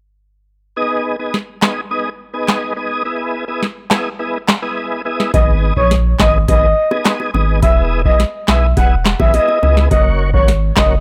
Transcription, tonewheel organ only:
0.76 B3 D#4 G#4 D#5
1.19 B3 D#4 G#4 D#5
1.62 B3 D#4 G#4 D#5
1.91 B3 D#4 G#4 D#5
2.34 B3 D#4 G#4 D#5
2.76 B3 D#4 G#4 D#5
3.05 B3 E4 G#4 D#5
3.48 B3 E4 G#4 D#5
3.91 B3 E4 G#4 D#5
4.19 B3 E4 G#4 D#5
4.62 B3 E4 G#4 D#5
5.05 B3 E4 G#4 D#5
5.34 B3 D#4 G#4 D#5
5.76 B3 D#4 G#4 D#5
6.19 B3 D#4 G#4 D#5
6.48 B3 D#4 G#4 D#5
6.91 B3 D#4 G#4 D#5
7.34 B3 D#4 G#4 D#5
7.62 B3 E4 G#4 D#5
8.05 B3 E4 G#4 D#5
8.48 B3 E4 G#4 D#5
8.77 B3 E4 G#4 D#5
9.19 B3 E4 G#4 D#5
9.62 B3 E4 G#4 D#5
9.91 A#3 C#4 F#4 C#5
10.34 A#3 C#4 F#4 C#5
10.76 A#3 C#4 F#4 C#5

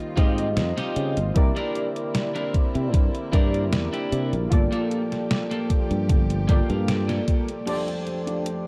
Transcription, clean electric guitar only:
0.17 C4 D#4 F4 G4
0.77 C4 D#4 F4 G4
1.56 D4 E4 A#4
2.14 muted clean electric guitar stroke
2.35 D4 E4 A#4
2.75 muted clean electric guitar stroke
2.93 muted clean electric guitar stroke
3.33 D4 E4 A#4
3.93 D4 E4 G4
4.72 A#3 F4 A4
5.30 muted clean electric guitar stroke
5.51 A#3 F4 A4
5.91 muted clean electric guitar stroke
6.09 muted clean electric guitar stroke
6.49 A#3 F4 G4 G5
6.70 F5
6.89 D5
7.09 A#3 F4 A4
7.67 D4 F4 G4 A4
8.07 muted clean electric guitar stroke
8.27 D4 F4 G4 A4

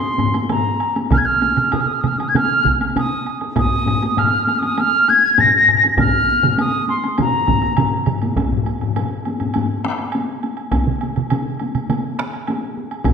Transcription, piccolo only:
Already playing: C6
0.51 A#5
1.13 F6
1.17 G#6
1.25 F6
1.72 D#6
1.80 F6
1.87 D#6
1.94 F6
2.01 D#6
2.07 F6
2.18 D#6
2.28 G#6
2.36 F6
2.98 D#6
3.59 D#6
4.18 F6
4.58 D#6
4.79 F6
5.09 G#6
5.40 A#6
5.99 F6
6.60 D#6
6.89 C6
7.21 A#5

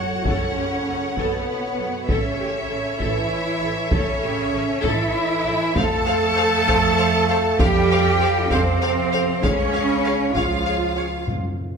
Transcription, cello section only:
Already playing: F#4
0.26 C#4
1.18 B3
2.10 C#4
3.01 E4
3.93 C#4
4.84 E4
5.76 A4
7.60 G4
8.52 C4
9.43 C#4
10.36 F4

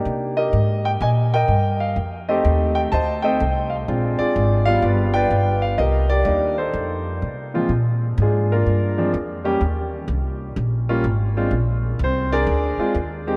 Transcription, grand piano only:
Already playing: A#3 D4 D#4 G4
0.37 G4 A#4 D#5
0.85 G5
1.02 D#5 G#5
1.34 A#4 D#5 G5
1.80 F5
2.29 A3 C4 D#4 G4 A4 C5 D#5
2.75 G5
2.92 C5 D#5 A5
3.22 A3 C4 D#4 A4 C5 D#5 G5
3.70 F5
3.88 G#3 C4 D4 F4
4.19 F4 G#4 D5
4.66 G3 B3 D4 F4 F5
4.82 F4 B4 D5
5.14 B4 D5 G5
5.62 F5
5.78 G4 A#4 D#5
6.10 G4 A#4 D5
6.26 G3 A#3 D4 D#4
6.58 D#4 A4 C5
7.54 A#2 F3 G#3 C4 F4
8.22 G#3 D4 F4 G#4
8.52 A#3 D4 F4 A#4
8.98 F3 G#3 C4 D4
9.45 G3 A#3 C#4 G4
10.89 G3 A#3 C#4 F4
11.37 G#3 C4 D4 F4
12.04 C4 C5
12.32 D4 G#4 A#4 D5
12.80 G#3 C4 D4 F4
13.27 G#3 C4 D#4 G4

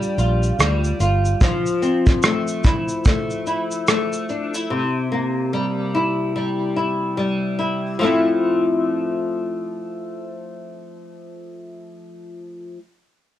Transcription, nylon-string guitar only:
Already playing: G3 D4 F4
0.18 F4
0.59 G3
1.00 F4
1.41 F3
1.82 C4
2.24 A3
2.65 E4
3.06 A3
3.47 E4
3.89 A3
4.30 D4
4.54 E4
4.71 C3
5.12 A#3
5.53 G3
5.95 E4
6.36 G3
6.76 E4
7.17 G3
7.58 E4
7.99 F3 A3
8.03 C4 E4

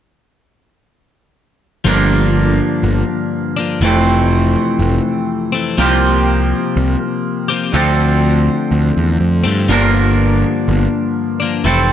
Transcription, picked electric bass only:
1.85 G1
2.83 G1
3.81 F1
4.79 F1
5.78 C2
6.76 C2
7.74 D2
8.71 D2
8.97 E2
9.20 F2
9.45 G2
9.69 G1
10.68 G1
11.65 F1

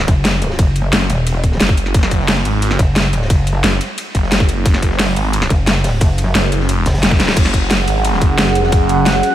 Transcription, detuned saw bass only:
0.93 F#1
1.60 F#1
1.94 F#1
2.45 G#1
3.64 F#1
4.15 F#1
4.66 F#1
5.16 G#1
6.35 F#1
6.52 F#1
7.03 F#1
7.37 F#1
7.88 G#1
8.22 F#1
8.72 F#1
9.06 F#1

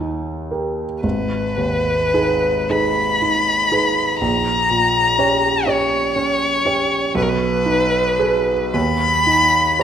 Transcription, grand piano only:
Already playing: D#2
0.00 D#4
0.51 G4 A#4
1.03 G#1
1.57 D#2
2.14 D#4 G#4 B4
2.70 D#4 G#4 B4
3.22 D#4
3.71 D#4 G#4 B4
4.21 A#1
4.70 A#2
5.18 C#4 G4 C#5
5.66 C#4 G4 C#5
6.16 C#4
6.65 C#4 G4 C#5
7.15 B1
7.66 D#4
8.19 G#4 B4
8.74 D#2
9.26 D#4
9.79 G4 C#5

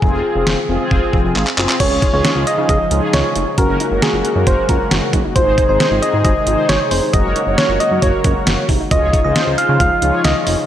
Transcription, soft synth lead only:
Already playing: G#4
1.80 C#5
2.14 C#5
2.47 D#5
2.69 D#5
3.14 C#5
3.58 A#4
4.03 G#4
4.47 C5
4.69 A#4
5.36 C5
5.69 C5
6.02 D#5
6.25 D#5
6.69 C#5
6.91 C5
7.13 D#5
7.58 C#5
7.80 D#5
8.02 C#5
8.91 D#5
9.24 D#5
9.58 F5
9.80 F5
10.25 D#5

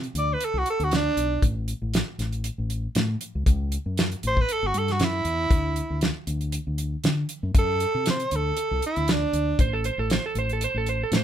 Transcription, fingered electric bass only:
0.15 D2
0.54 C2
0.80 D2
1.17 B1
1.42 A1
1.82 A1
2.18 A1
2.58 A1
2.95 A2
3.35 C#2
3.47 C#2
3.86 F#2
4.23 A1
4.62 G1
4.74 G2
5.00 F#2
5.25 E2
5.50 D2
5.90 D2
6.27 D2
6.67 D2
7.04 D3
7.43 F#2
7.54 F#2
7.95 C3
8.32 D2
8.71 C2
8.97 D2
9.33 D2
9.59 A1
9.98 A1
10.35 A1
10.74 A1
11.11 A2

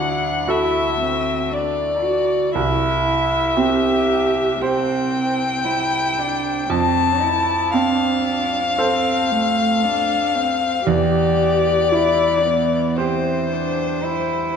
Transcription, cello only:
Already playing: D4
0.47 E4
1.01 C4
1.51 D4
2.03 F#4
2.53 E4
3.56 G4
4.60 C4
5.65 E4
6.18 D4
6.70 C4
7.21 E4
7.74 D4
8.79 C4
9.30 A3
9.82 D4
10.35 C4
10.86 G4
11.93 E4
12.45 B3
12.97 C4
13.50 D4
14.03 E4

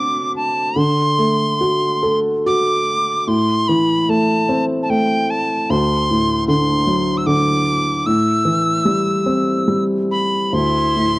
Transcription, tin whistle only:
Already playing: D6
0.36 A5
0.78 C6
2.47 D6
3.20 D6
3.28 C6
3.68 B5
4.10 A5
4.83 A5
4.90 G5
5.30 A5
5.70 C6
6.48 C6
7.17 E6
7.26 D6
8.06 E6
10.11 B5
10.54 C6

